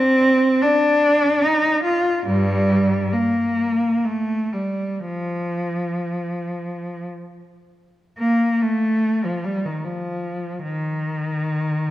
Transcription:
0.00 0.62 C4 loud
0.62 1.42 D4 loud
1.42 1.83 D#4 medium
1.83 2.25 F4 medium
2.26 3.08 G2 medium
2.26 3.10 G3 loud
3.12 4.04 A#3 medium
4.04 4.53 A3 medium
4.53 5.05 G3 medium
5.05 7.04 F3 medium
8.18 8.58 A#3 medium
8.61 9.23 A3 medium
9.25 9.44 F3 medium
9.45 9.64 G3 medium
9.65 9.84 D#3 medium
9.85 10.63 F3 medium
10.64 11.91 D#3 medium

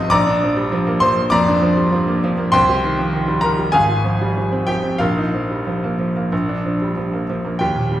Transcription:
0.00 0.13 G#1 medium
0.00 0.14 F3 medium
0.00 0.14 G3 medium
0.00 0.14 C4 medium
0.00 0.14 D#4 medium
0.00 0.14 D#5 medium
0.00 0.13 F5 medium
0.00 0.13 C6 loud
0.00 0.10 D#6 loud
0.00 0.14 F6 loud
0.10 1.28 A#1 medium
0.10 0.97 D5 medium
0.10 0.97 A#5 loud
0.10 1.00 D6 loud
0.27 0.51 D4 medium
0.43 0.66 F3 medium
0.57 0.72 G3 medium
0.72 0.96 F3 medium
0.87 1.10 A#3 medium
1.00 1.26 F3 medium
1.00 1.29 C5 medium
1.00 1.31 C6 loud
1.17 1.41 A#3 medium
1.30 1.56 F2 medium
1.30 2.50 D5 loud
1.30 2.50 A#5 loud
1.30 2.53 D6 loud
1.48 1.71 D4 medium
1.62 1.86 F3 medium
1.77 1.92 G3 medium
1.92 2.17 F3 medium
2.07 2.32 A#3 medium
2.24 2.48 F3 medium
2.38 2.53 A#3 medium
2.52 3.70 C2 medium
2.52 3.39 C5 medium
2.52 3.39 G5 loud
2.52 3.42 C6 loud
2.69 2.92 G4 medium
2.84 3.07 D#3 medium
2.99 3.13 F3 medium
3.13 3.37 D#3 medium
3.28 3.52 G3 medium
3.41 3.67 D#3 medium
3.41 3.71 A#4 medium
3.41 3.72 A#5 loud
3.58 3.73 G3 medium
3.72 4.96 G#1 medium
3.72 4.63 G#4 medium
3.72 4.63 F5 medium
3.72 4.66 G#5 loud
3.89 4.14 F4 medium
4.05 4.29 F3 medium
4.22 4.36 G3 medium
4.37 4.62 F3 medium
4.52 4.77 C4 medium
4.67 4.94 F3 medium
4.67 4.98 G4 medium
4.67 5.00 G5 loud
4.83 5.00 C4 medium
4.98 6.28 A#1 medium
4.98 7.24 F4 medium
4.98 7.24 A#4 medium
4.98 7.28 F5 loud
5.17 5.43 D#4 medium
5.34 5.60 F3 medium
5.50 5.67 G3 medium
5.67 5.93 F3 medium
5.84 6.09 A#3 medium
5.99 6.25 F3 medium
6.16 6.32 A#3 medium
6.32 7.57 A#1 medium
6.49 6.74 D4 medium
6.66 6.90 F3 medium
6.82 6.97 G3 medium
6.97 7.23 F3 medium
7.13 7.39 A#3 medium
7.30 7.55 F3 medium
7.45 7.60 A#3 medium
7.59 8.00 D#2 medium
7.59 8.00 G4 medium
7.59 8.00 G5 medium
7.75 8.00 A#2 medium
7.92 8.00 G3 soft

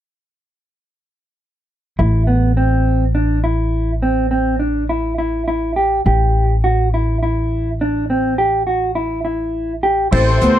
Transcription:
1.99 6.02 A1 medium
1.99 2.22 E4 medium
2.27 2.51 B3 medium
2.57 3.04 C4 medium
3.15 3.38 D4 medium
3.44 3.91 E4 medium
4.02 4.26 C4 medium
4.31 4.55 C4 medium
4.59 4.83 D4 medium
4.89 5.13 E4 medium
5.18 5.42 E4 medium
5.48 5.71 E4 medium
5.76 6.00 G4 medium
6.06 10.09 A1 medium
6.06 6.53 G4 medium
6.64 6.87 F#4 medium
6.94 7.17 E4 medium
7.23 7.69 E4 medium
7.81 8.04 D4 medium
8.10 8.33 C4 medium
8.38 8.62 G4 medium
8.67 8.90 F#4 medium
8.95 9.19 E4 medium
9.25 9.72 E4 medium
9.83 10.07 G4 medium
10.11 10.37 A1 medium
10.11 10.59 C4 medium
10.11 10.36 E4 medium
10.11 10.59 E4 medium
10.11 10.59 G4 soft
10.11 10.59 A4 medium
10.11 10.59 C5 loud
10.11 kick medium
10.11 crash medium
10.42 10.54 D2 medium
10.42 10.59 B3 medium
10.42 closed hi-hat soft

